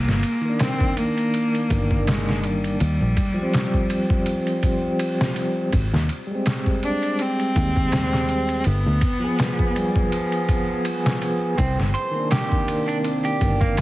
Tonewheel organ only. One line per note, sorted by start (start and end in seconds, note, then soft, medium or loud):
0.41 2.77 D#3 medium
0.45 2.79 A#3 medium
0.45 2.81 D4 medium
3.34 5.69 F3 medium
3.39 5.72 G3 medium
3.39 5.74 C4 medium
6.27 8.62 G3 medium
6.31 8.64 G#3 medium
6.35 8.66 C4 medium
9.19 11.55 F3 medium
9.24 11.59 B3 medium
9.24 11.57 G#4 medium
12.11 13.81 D#3 medium
12.11 13.81 A#3 medium
12.19 13.81 D4 medium